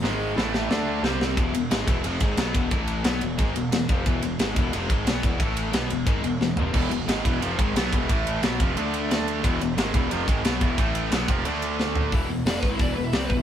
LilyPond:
<<
  \new Staff \with { instrumentName = "Lead electric guitar" } { \time 4/4 \tempo 4 = 179 r1 | r1 | r1 | r1 |
r1 | r1 | r1 | r1 |
r1 | r4 \tuplet 3/2 { d''8 b'8 e'8 d''8 b'8 e'8 d''8 b'8 e'8 } | }
  \new Staff \with { instrumentName = "Distorted electric guitar" } { \clef bass \time 4/4 <gis, dis gis>4 <a, e a>4 <d a d'>4 <c g c'>4 | r1 | r1 | r1 |
r1 | <e, b, e>8 <e, b,>8 <gis, dis gis>8 <e, b, e>8 <f, c f>8 <gis, dis gis>8 <b, fis b>8 <e, b, e>8 | <a, e a>4 <b, fis b>8 <f, c f>8 <d a d'>2 | <e, b, e>8 <e, b,>8 <gis, dis gis>8 <e, b, e>8 <f, c f>8 <gis, dis gis>8 <b, fis b>8 <e, b, e>8 |
<a, e a>4 <b, fis b>8 <f, c f>8 <d a d'>2 | r1 | }
  \new Staff \with { instrumentName = "Distorted electric guitar" } { \clef bass \time 4/4 <gis, dis gis>4 <a, e a>4 <d a d'>4 <c g c'>4 | <e, b, e>8 <e, b,>8 <gis, dis gis>8 <e, b, e>8 <f, c f>8 <gis, dis gis>8 <b, fis b>8 <e, b, e>8 | <a, e a>4 <b, fis b>8 <e, b,>8 <gis, dis gis>8 <e, b,>8 <e, b,>8 <f, c f>8 | <e, b, e>8 <e, b,>8 <gis, dis gis>8 <e, b, e>8 <f, c f>8 <gis, dis gis>8 <b, fis b>8 <e, b, e>8 |
<a, e a>4 <b, fis b>8 <e, b,>8 <gis, dis gis>8 <e, b,>8 <e, b,>8 <f, c f>8 | <e, b, e>8 <e, b,>8 <gis, dis gis>8 <e, b, e>8 <f, c f>8 <gis, dis gis>8 <b, fis b>8 <e, b, e>8 | <a, e a>4 <b, fis b>8 <f, c f>8 <d a d'>2 | <e, b, e>8 <e, b,>8 <gis, dis gis>8 <e, b, e>8 <f, c f>8 <gis, dis gis>8 <b, fis b>8 <e, b, e>8 |
<a, e a>4 <b, fis b>8 <f, c f>8 <d a d'>2 | <e, b, e>8 <e, b,>8 <f, c f>8 <gis, dis gis>8 <e, b, e>8 <e, b,>8 <c g c'>8 <e, b,>8 | }
  \new Staff \with { instrumentName = "Distorted electric guitar" } { \clef bass \time 4/4 <gis, dis gis>4 <a, e a>4 <d a d'>4 <c g c'>4 | <e, b, e>8 <e, b,>8 <gis, dis gis>8 <e, b, e>8 <f, c f>8 <gis, dis gis>8 <b, fis b>8 <e, b, e>8 | <a, e a>4 <b, fis b>8 <e, b,>8 <gis, dis gis>8 <e, b,>8 <e, b,>8 <f, c f>8 | <e, b, e>8 <e, b,>8 <gis, dis gis>8 <e, b, e>8 <f, c f>8 <gis, dis gis>8 <b, fis b>8 <e, b, e>8 |
<a, e a>4 <b, fis b>8 <e, b,>8 <gis, dis gis>8 <e, b,>8 <e, b,>8 <f, c f>8 | <e, b, e>8 <e, b,>8 <gis, dis gis>8 <e, b, e>8 <f, c f>8 <gis, dis gis>8 <b, fis b>8 <e, b, e>8 | <a, e a>4 <b, fis b>8 <f, c f>8 <d a d'>2 | <e, b, e>8 <e, b,>8 <gis, dis gis>8 <e, b, e>8 <f, c f>8 <gis, dis gis>8 <b, fis b>8 <e, b, e>8 |
<a, e a>4 <b, fis b>8 <f, c f>8 <d a d'>2 | <e, b, e>8 <e, b,>8 <f, c f>8 <gis, dis gis>8 <e, b, e>8 <e, b,>8 <c g c'>8 <e, b,>8 | }
  \new Staff \with { instrumentName = "Picked electric bass" } { \clef bass \time 4/4 gis,,4 a,,4 d,4 c,4 | e,,8 e,,8 gis,,8 e,,8 f,,8 gis,,8 b,,8 e,,8 | a,,4 b,,8 e,,8 gis,,8 e,,8 e,,8 f,,8 | e,,8 e,,8 gis,,8 e,,8 f,,8 gis,,8 b,,8 e,,8 |
a,,4 b,,8 e,,8 gis,,8 e,,8 e,,8 f,,8 | e,,8 e,,8 gis,,8 e,,8 f,,8 gis,,8 b,,8 e,,8 | a,,4 b,,8 f,,8 d,2 | e,,8 e,,8 gis,,8 e,,8 f,,8 gis,,8 b,,8 e,,8 |
a,,4 b,,8 f,,8 d,2 | e,,8 e,,8 f,,8 gis,,8 e,,8 e,,8 c,8 e,,8 | }
  \new DrumStaff \with { instrumentName = "Drums" } \drummode { \time 4/4 sn4 sn8 sn8 sn4 sn8 sn8 | <bd cymr>8 cymr8 <cymr sn>8 <bd cymr>8 cymr8 <bd cymr>8 <cymr sn>8 <bd cymr>8 | <bd cymr>8 cymr8 <cymr sn>8 cymr8 <bd cymr>8 cymr8 <cymr sn>8 <bd cymr>8 | <bd cymr>8 cymr8 <cymr sn>8 <bd cymr>8 cymr8 <bd cymr>8 <cymr sn>8 <bd cymr>8 |
<bd cymr>8 cymr8 <cymr sn>8 cymr8 <bd cymr>8 cymr8 sn8 tomfh8 | <cymc bd>8 cymr8 <cymr sn>8 <bd cymr>8 cymr8 <bd cymr>8 <cymr sn>8 <bd cymr>8 | <bd cymr>8 cymr8 <cymr sn>8 <bd cymr>8 cymr8 cymr8 <cymr sn>8 cymr8 | <bd cymr>8 cymr8 <cymr sn>8 <bd cymr>8 cymr8 <bd cymr>8 <cymr sn>8 <bd cymr>8 |
<bd cymr>8 cymr8 <cymr sn>8 <bd cymr>8 cymr8 cymr8 sn8 tomfh8 | <hho bd>4 <hho sn>16 sn16 <bd sn>8 <hho bd>4 <hho sn>8 bd8 | }
>>